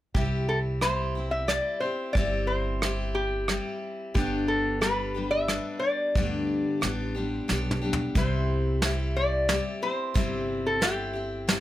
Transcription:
0.14 1.58 C2 medium
0.14 0.82 C3 medium
0.14 0.82 G3 medium
0.14 0.82 C4 medium
0.14 0.83 E4 medium
0.14 0.48 G4 medium
0.14 0.85 G4 medium
0.14 kick medium
0.49 0.58 A4 medium
0.81 1.15 G3 medium
0.81 1.16 C4 medium
0.81 1.16 E4 medium
0.81 1.28 C5 medium
0.81 cross-stick medium
0.86 1.14 G4 medium
1.15 1.47 C4 soft
1.15 1.49 E4 soft
1.15 1.49 G4 soft
1.31 1.49 E5 medium
1.48 1.81 G3 soft
1.48 1.82 C4 soft
1.48 1.82 E4 soft
1.48 1.81 G4 soft
1.48 1.80 D5 medium
1.48 cross-stick medium
1.80 2.16 E4 soft
1.80 2.15 G4 soft
1.80 2.16 C5 medium
1.85 2.15 C4 soft
2.13 3.58 G1 medium
2.13 2.82 C3 medium
2.13 2.81 G3 medium
2.13 2.82 C4 medium
2.13 2.82 E4 medium
2.13 2.48 D5 medium
2.13 kick loud
2.18 2.84 G4 medium
2.47 3.17 C5 medium
2.82 3.47 G3 medium
2.82 3.48 C4 medium
2.82 3.48 E4 medium
2.82 3.51 G4 medium
2.82 cross-stick medium
3.15 3.78 G4 medium
3.48 4.15 G3 soft
3.48 4.15 C4 soft
3.48 4.16 E4 medium
3.48 4.16 G4 medium
3.48 cross-stick medium
4.14 5.58 G1 medium
4.14 4.82 G2 medium
4.14 4.82 D3 medium
4.14 4.81 G3 medium
4.14 4.81 B3 medium
4.14 4.82 D4 medium
4.14 4.46 G4 medium
4.14 4.84 G4 medium
4.14 kick loud
4.48 4.81 A4 medium
4.81 5.15 G3 medium
4.81 5.15 B3 medium
4.81 5.15 D4 medium
4.81 5.13 G4 medium
4.81 5.33 B4 medium
4.81 cross-stick medium
5.14 5.47 G3 soft
5.14 5.48 B3 soft
5.14 5.49 D4 soft
5.14 5.48 G4 soft
5.31 5.83 E5 loud
5.48 6.16 G3 soft
5.48 6.16 B3 medium
5.48 6.16 D4 medium
5.48 6.18 G4 medium
5.48 cross-stick medium
5.79 7.08 D5 medium
6.15 6.63 D2 medium
6.15 6.82 G2 medium
6.15 6.83 D3 medium
6.15 6.80 G3 medium
6.15 6.81 B3 medium
6.15 6.83 D4 medium
6.15 6.83 G4 medium
6.15 kick loud
6.81 7.39 A1 medium
6.81 7.15 G3 medium
6.81 7.15 B3 medium
6.81 7.15 D4 medium
6.81 7.13 G4 medium
6.81 cross-stick medium
7.08 7.77 C5 medium
7.15 7.47 G3 soft
7.15 7.48 B3 soft
7.15 7.49 D4 soft
7.15 7.48 G4 soft
7.48 8.06 B1 medium
7.48 7.82 G3 medium
7.48 7.82 B3 medium
7.48 7.81 D4 medium
7.48 7.80 G4 medium
7.48 snare soft
7.71 mid tom medium
7.82 8.15 G3 soft
7.82 8.16 B3 soft
7.82 8.16 D4 soft
7.82 8.15 G4 soft
7.93 floor tom medium
8.15 9.58 C2 medium
8.15 8.82 C3 medium
8.15 8.82 G3 medium
8.15 8.82 C4 medium
8.15 8.83 E4 medium
8.15 8.85 G4 medium
8.15 9.12 C5 medium
8.15 kick loud
8.15 closed hi-hat medium
8.82 9.48 G3 medium
8.82 9.49 C4 medium
8.82 9.49 E4 medium
8.82 9.52 G4 medium
8.82 snare medium
8.82 closed hi-hat medium
9.16 9.78 D5 medium
9.48 9.82 G3 medium
9.48 9.83 C4 medium
9.48 9.82 E4 medium
9.48 9.81 G4 medium
9.48 snare medium
9.48 closed hi-hat medium
9.82 10.14 C4 soft
9.82 10.15 E4 soft
9.82 10.15 G4 soft
9.82 10.68 C5 medium
10.14 11.58 G1 medium
10.14 10.81 C3 medium
10.14 10.81 G3 medium
10.14 10.81 C4 medium
10.14 10.82 E4 medium
10.14 10.84 G4 medium
10.14 kick loud
10.14 closed hi-hat medium
10.67 10.83 A4 medium
10.81 11.15 G3 medium
10.81 11.15 C4 medium
10.81 11.14 E4 medium
10.81 11.60 G4 medium
10.81 11.12 G4 medium
10.81 snare medium
10.81 closed hi-hat medium
11.13 11.47 C4 soft
11.13 11.49 E4 soft
11.13 11.47 G4 soft
11.48 11.60 G3 medium
11.48 11.60 C4 medium
11.48 11.60 E4 medium
11.48 11.60 G4 medium
11.48 snare medium
11.48 closed hi-hat medium

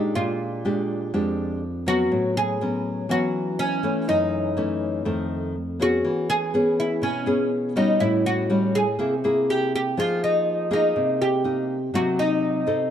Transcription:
0.00 0.13 A#2 medium
0.00 0.61 G#3 medium
0.00 0.61 D4 medium
0.00 0.15 D#4 medium
0.00 0.61 G4 medium
0.15 1.11 A#2 medium
0.15 1.59 F4 medium
0.65 1.10 G#3 medium
0.65 1.10 D4 soft
0.65 1.10 G4 medium
1.14 2.09 F2 medium
1.14 1.62 G#3 medium
1.14 1.62 D4 medium
1.14 1.63 G4 medium
1.86 2.56 F#3 medium
1.86 2.57 B3 medium
1.86 2.57 C#4 medium
1.86 2.37 F#4 medium
2.12 3.07 A2 medium
2.37 3.11 G#4 medium
2.61 3.06 F#3 soft
2.61 3.06 B3 medium
2.61 3.06 C#4 medium
3.09 3.82 E3 medium
3.09 3.79 F#3 soft
3.09 3.80 B3 medium
3.09 3.80 C#4 soft
3.09 3.61 F#4 medium
3.59 4.08 C#4 medium
3.83 4.53 E3 medium
3.83 4.53 A3 medium
3.83 4.53 C#4 medium
4.08 5.04 F#2 medium
4.08 5.52 D#4 medium
4.57 5.02 E3 soft
4.57 5.02 A3 medium
4.57 5.02 C#4 medium
5.05 6.01 F2 medium
5.05 5.55 D#3 medium
5.05 5.55 A3 medium
5.80 6.49 B3 soft
5.80 6.50 C#4 medium
5.80 6.29 F#4 medium
5.80 6.50 G#4 medium
6.05 7.00 E3 medium
6.30 6.75 G#4 loud
6.54 7.02 B3 medium
6.54 7.03 C#4 medium
6.54 7.03 G#4 medium
6.80 7.04 E4 medium
7.02 7.98 B2 medium
7.02 7.48 C#4 medium
7.26 7.72 B3 medium
7.26 7.72 C#4 medium
7.26 7.72 G#4 medium
7.76 8.46 G3 medium
7.76 8.46 C#4 medium
7.76 8.02 D#4 medium
7.76 8.46 F#4 medium
8.00 8.96 A2 medium
8.00 8.26 E4 medium
8.26 8.75 F#4 medium
8.50 8.83 G3 medium
8.50 8.83 C#4 medium
8.50 8.83 F#4 medium
8.75 9.69 G#4 medium
8.99 9.94 C3 medium
8.99 9.13 A#3 medium
8.99 9.13 E4 soft
8.99 9.13 G#4 medium
9.24 9.93 A#3 medium
9.24 9.93 E4 medium
9.24 9.94 G#4 medium
9.50 9.72 G4 medium
9.75 9.97 G4 medium
9.97 10.93 F3 medium
9.97 10.67 A#3 soft
9.97 10.67 D#4 medium
9.97 10.23 F4 medium
9.97 10.67 G#4 medium
10.24 10.72 D#4 medium
10.71 11.40 A#3 medium
10.71 11.40 D#4 medium
10.71 11.22 D#4 medium
10.71 11.40 G#4 medium
10.96 11.91 C3 medium
11.22 11.95 G4 medium
11.44 11.76 A#3 medium
11.44 11.76 D#4 soft
11.94 12.89 C3 medium
11.94 12.63 F#3 medium
11.94 12.63 A#3 soft
11.94 12.63 D#4 medium
11.94 12.19 F#4 medium
12.19 12.90 D#4 medium
12.67 12.90 C4 medium
12.67 12.90 D#4 medium
12.67 12.90 A4 medium

